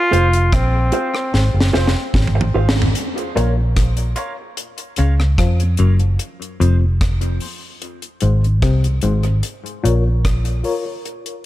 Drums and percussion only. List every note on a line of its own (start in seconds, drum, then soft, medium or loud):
0.13 closed hi-hat medium
0.33 closed hi-hat medium
0.53 kick loud
0.53 cross-stick loud
0.53 closed hi-hat medium
0.92 closed hi-hat medium
1.15 cross-stick medium
1.34 snare medium
1.61 snare medium
1.74 snare medium
1.88 snare medium
2.14 kick loud
2.14 snare medium
2.27 mid tom medium
2.41 mid tom medium
2.69 snare loud
2.82 floor tom medium
2.95 closed hi-hat medium
3.18 closed hi-hat soft
3.37 closed hi-hat medium
3.76 kick loud
3.76 cross-stick loud
3.76 closed hi-hat medium
3.97 closed hi-hat medium
4.16 closed hi-hat medium
4.57 closed hi-hat medium
4.78 closed hi-hat medium
4.96 closed hi-hat medium
5.20 cross-stick medium
5.38 kick loud
5.38 cross-stick medium
5.38 closed hi-hat medium
5.60 closed hi-hat soft
5.77 closed hi-hat medium
5.99 closed hi-hat soft
6.19 closed hi-hat medium
6.42 closed hi-hat soft
6.61 closed hi-hat medium
7.01 kick loud
7.01 cross-stick loud
7.01 closed hi-hat medium
7.21 closed hi-hat medium
7.40 open hi-hat soft
7.82 closed hi-hat medium
8.02 closed hi-hat medium
8.21 closed hi-hat medium
8.44 closed hi-hat soft
8.62 kick loud
8.62 cross-stick loud
8.62 closed hi-hat medium
8.84 closed hi-hat soft
9.02 closed hi-hat medium
9.23 closed hi-hat soft
9.43 closed hi-hat medium
9.66 closed hi-hat soft
9.85 closed hi-hat medium
10.25 kick loud
10.25 cross-stick loud
10.25 closed hi-hat medium
10.45 closed hi-hat medium
10.64 open hi-hat soft
11.05 closed hi-hat medium
11.26 closed hi-hat medium